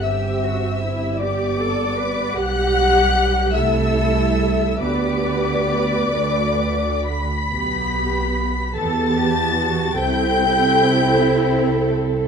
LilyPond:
<<
  \new Staff \with { instrumentName = "Violin section" } { \time 6/8 \key g \major \tempo 4. = 50 e'''4. d'''4. | fis'''4. e'''4. | d'''2~ d'''8 b'''8~ | b'''4. a'''4. |
g'''2~ g'''8 r8 | }
  \new Staff \with { instrumentName = "Violin section" } { \time 6/8 \key g \major e''4. d''4. | fis''4. e''4. | d''2~ d''8 b''8~ | b''4. a''4. |
g''2~ g''8 r8 | }
  \new Staff \with { instrumentName = "Cello section" } { \time 6/8 \key g \major g'8 fis'8 e'8 g'8 a'8 b'8 | g'4. a'4. | b'2~ b'16 r8. | r4. a'8 g'8 fis'8 |
e'2. | }
  \new Staff \with { instrumentName = "Viola section" } { \time 6/8 \key g \major << { g'2. | g'4. e'4. | g'4. fis'4~ fis'16 r16 | g'4. g'4. |
a'2. | } \\ { c'4. b4. | g4. a4. | b4. a4~ a16 r16 | b4. b4. |
c'2. | } >> }
  \new Staff \with { instrumentName = "Double bass section" } { \clef bass \time 6/8 \key g \major g,,2. | b,,4. c,4. | d,4. d,4~ d,16 r16 | b,,4. e,4. |
c,2. | }
>>